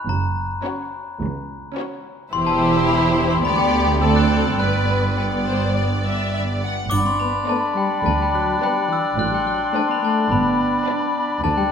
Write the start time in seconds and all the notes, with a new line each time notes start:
0.09 F#1 F#2 A#5
0.64 C#4 F#4 C#5
1.20 C#2
1.76 C#4 F#4 C#5
2.32 E1 E2 E4 G4 C5 C6
2.47 A5
2.89 B5
3.30 C6
3.45 D2 B3 G4 D5 B5
3.58 G5
4.01 C4 A4 D5 E6
4.16 F#6
4.59 G1 G2 B3 B4 D5 F#6
5.17 B3 B4 D5 G5
5.46 C5
5.74 D5
6.05 E5
6.33 E5
6.62 F#5
6.90 G1 G2 D4 D5 B5 D6, triangle
7.05 C4 C6
7.20 B3 B5
7.47 A3 B3 B4 D5 A5
7.74 G3 G5
8.02 D2 A3 A5
8.18 G3
8.22 G5
8.31 F#3
8.35 F#6
8.59 G3 B3 B4 D5
8.63 G5
8.88 E3
8.93 E6
9.15 A1 A2 F#3 C6 F#6
9.30 G3 G5
9.45 F#3 F#6
9.73 A3 D4 C5 D5 A5
9.88 B3 B5
10.01 A3 A5
10.30 G1 G2 B3 B5
10.86 D4 B4 D5
11.43 D2 A3 D4 D5 A5
11.57 G3 G5